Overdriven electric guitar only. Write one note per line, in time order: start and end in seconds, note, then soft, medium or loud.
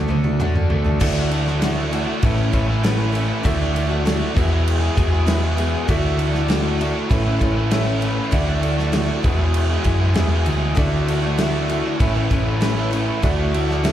0.00 0.69 A3 medium
0.00 0.39 D4 medium
0.09 0.98 D3 medium
0.40 1.00 D4 medium
0.70 0.99 A3 medium
1.00 1.29 D3 medium
1.00 1.30 A3 medium
1.00 1.31 D4 loud
1.00 1.32 F#4 loud
1.30 1.61 D3 medium
1.30 1.48 A3 medium
1.30 1.46 D4 medium
1.30 1.45 F#4 medium
1.46 1.62 A3 medium
1.46 1.62 D4 medium
1.46 1.63 F#4 medium
1.62 1.91 D3 medium
1.62 1.92 A3 loud
1.62 1.92 D4 medium
1.62 1.93 F#4 loud
1.92 2.21 D3 medium
1.92 2.08 A3 medium
1.92 2.07 D4 medium
1.92 2.06 F#4 medium
2.07 2.22 A3 medium
2.07 2.22 D4 medium
2.07 2.21 F#4 medium
2.23 2.69 A2 medium
2.23 2.51 E3 loud
2.23 2.38 A3 loud
2.23 2.37 C#4 loud
2.23 2.36 E4 medium
2.37 2.51 A3 medium
2.37 2.53 C#4 medium
2.37 2.54 E4 medium
2.52 2.82 E3 medium
2.52 2.69 A3 medium
2.52 2.67 C#4 medium
2.52 2.67 E4 medium
2.67 2.81 A3 medium
2.67 2.82 C#4 medium
2.67 2.83 E4 medium
2.81 3.28 A2 loud
2.81 3.11 E3 medium
2.81 2.98 A3 medium
2.81 2.97 C#4 medium
2.81 2.96 E4 loud
2.96 3.12 A3 medium
2.96 3.12 C#4 medium
2.96 3.14 E4 medium
3.12 3.42 E3 medium
3.12 3.42 A3 medium
3.12 3.43 C#4 medium
3.12 3.45 E4 medium
3.43 3.73 D3 medium
3.43 3.73 A3 loud
3.43 3.74 D4 medium
3.43 3.75 F#4 loud
3.74 4.03 D3 medium
3.74 3.90 A3 medium
3.74 3.90 D4 medium
3.74 3.88 F#4 medium
3.90 4.03 A3 medium
3.90 4.04 D4 medium
3.90 4.05 F#4 medium
4.04 4.33 D3 loud
4.04 4.34 A3 loud
4.04 4.34 D4 loud
4.04 4.35 F#4 loud
4.34 4.81 E2 medium
4.34 4.81 B2 medium
4.34 4.51 E3 loud
4.34 4.49 G#3 loud
4.34 4.49 B3 loud
4.34 4.48 G#4 loud
4.49 4.82 E3 medium
4.49 4.81 G#3 medium
4.49 4.80 B3 medium
4.49 4.79 G#4 medium
4.80 4.95 E3 medium
4.80 4.95 G#3 medium
4.80 4.96 B3 medium
4.80 4.97 G#4 medium
4.96 5.13 E3 medium
4.96 5.12 G#3 medium
4.96 5.11 B3 medium
4.96 5.10 G#4 medium
5.11 5.26 E3 medium
5.11 5.26 G#3 medium
5.11 5.26 B3 medium
5.11 5.27 G#4 medium
5.25 5.72 E2 medium
5.25 5.73 B2 loud
5.25 5.43 E3 loud
5.25 5.42 G#3 loud
5.25 5.41 B3 loud
5.25 5.40 G#4 loud
5.41 5.55 E3 medium
5.41 5.55 G#3 medium
5.41 5.56 B3 medium
5.41 5.57 G#4 medium
5.56 5.86 E3 medium
5.56 5.86 G#3 medium
5.56 5.87 B3 medium
5.56 5.87 G#4 loud
5.86 6.16 D3 medium
5.86 6.17 A3 medium
5.86 6.18 D4 loud
5.86 6.19 F#4 loud
6.17 6.48 D3 medium
6.17 6.35 A3 medium
6.17 6.34 D4 medium
6.17 6.32 F#4 medium
6.34 6.48 A3 medium
6.34 6.50 D4 medium
6.34 6.50 F#4 medium
6.49 6.78 D3 loud
6.49 6.79 A3 loud
6.49 6.80 D4 loud
6.49 6.80 F#4 loud
6.79 7.08 D3 medium
6.79 6.96 A3 medium
6.79 6.94 D4 medium
6.79 6.93 F#4 medium
6.94 7.10 A3 medium
6.94 7.09 D4 medium
6.94 7.08 F#4 medium
7.09 7.56 A2 medium
7.09 7.39 E3 loud
7.09 7.26 A3 loud
7.09 7.25 C#4 loud
7.09 7.24 E4 loud
7.24 7.39 A3 medium
7.24 7.40 C#4 medium
7.24 7.42 E4 medium
7.40 7.71 E3 medium
7.40 7.56 A3 medium
7.40 7.55 C#4 medium
7.40 7.54 E4 medium
7.55 7.71 A3 medium
7.55 7.71 C#4 medium
7.55 7.72 E4 medium
7.71 8.17 A2 loud
7.71 8.01 E3 medium
7.71 7.88 A3 loud
7.71 7.87 C#4 loud
7.71 7.86 E4 loud
7.86 8.01 A3 medium
7.86 8.02 C#4 medium
7.86 8.04 E4 medium
8.02 8.32 E3 medium
8.02 8.31 A3 medium
8.02 8.31 C#4 medium
8.02 8.34 E4 medium
8.32 8.61 D3 medium
8.32 8.62 A3 medium
8.32 8.63 D4 loud
8.32 8.63 F#4 loud
8.62 8.92 D3 medium
8.62 8.79 A3 medium
8.62 8.78 D4 loud
8.62 8.76 F#4 medium
8.78 8.93 A3 medium
8.78 8.94 D4 medium
8.78 8.95 F#4 medium
8.93 9.22 D3 medium
8.93 9.23 A3 medium
8.93 9.23 D4 loud
8.93 9.24 F#4 loud
9.24 9.70 E2 medium
9.24 9.70 B2 loud
9.24 9.42 E3 medium
9.24 9.40 G#3 loud
9.24 9.39 B3 loud
9.24 9.38 G#4 loud
9.39 9.72 E3 medium
9.39 9.71 G#3 medium
9.39 9.70 B3 medium
9.39 9.69 G#4 medium
9.70 9.85 E3 medium
9.70 9.85 G#3 medium
9.70 9.86 B3 medium
9.70 9.87 G#4 medium
9.85 10.03 E3 medium
9.85 10.01 G#3 medium
9.85 10.00 B3 medium
9.85 9.99 G#4 medium
10.00 10.16 E3 medium
10.00 10.16 G#3 medium
10.00 10.16 B3 medium
10.00 10.17 G#4 medium
10.15 10.62 E2 medium
10.15 10.62 B2 loud
10.15 10.34 E3 medium
10.15 10.32 G#3 loud
10.15 10.32 B3 medium
10.15 10.30 G#4 loud
10.31 10.46 E3 medium
10.31 10.46 G#3 medium
10.31 10.47 B3 medium
10.31 10.48 G#4 medium
10.46 10.77 E3 medium
10.46 10.76 G#3 medium
10.46 10.76 B3 medium
10.46 10.77 G#4 medium
10.77 11.06 D3 medium
10.77 11.07 A3 medium
10.77 11.08 D4 medium
10.77 11.09 F#4 medium
11.08 11.38 D3 medium
11.08 11.25 A3 medium
11.08 11.24 D4 medium
11.08 11.23 F#4 medium
11.24 11.38 A3 medium
11.24 11.39 D4 medium
11.24 11.40 F#4 medium
11.39 11.68 D3 medium
11.39 11.69 A3 loud
11.39 11.70 D4 loud
11.39 11.70 F#4 loud
11.69 11.98 D3 medium
11.69 11.86 A3 medium
11.69 11.85 D4 medium
11.69 11.84 F#4 medium
11.85 12.00 A3 medium
11.85 11.99 D4 medium
11.85 11.99 F#4 medium
11.99 12.46 A2 loud
11.99 12.30 E3 medium
11.99 12.16 A3 loud
11.99 12.15 C#4 loud
11.99 12.14 E4 loud
12.15 12.30 A3 medium
12.15 12.31 C#4 medium
12.15 12.33 E4 medium
12.31 12.61 E3 medium
12.31 12.47 A3 medium
12.31 12.46 C#4 medium
12.31 12.46 E4 medium
12.46 12.60 A3 medium
12.46 12.61 C#4 medium
12.46 12.63 E4 medium
12.60 13.07 A2 medium
12.60 12.91 E3 medium
12.60 12.78 A3 loud
12.60 12.76 C#4 loud
12.60 12.75 E4 loud
12.76 12.91 A3 medium
12.76 12.92 C#4 medium
12.76 12.93 E4 medium
12.91 13.22 E3 medium
12.91 13.21 A3 medium
12.91 13.22 C#4 medium
12.91 13.24 E4 loud
13.22 13.52 D3 loud
13.22 13.53 A3 medium
13.22 13.53 D4 medium
13.22 13.54 F#4 medium
13.53 13.82 D3 medium
13.53 13.69 A3 medium
13.53 13.68 D4 medium
13.53 13.67 F#4 medium
13.68 13.83 A3 medium
13.68 13.84 D4 medium
13.68 13.84 F#4 medium
13.83 13.92 D3 loud
13.83 13.92 A3 medium
13.83 13.92 D4 loud
13.83 13.92 F#4 loud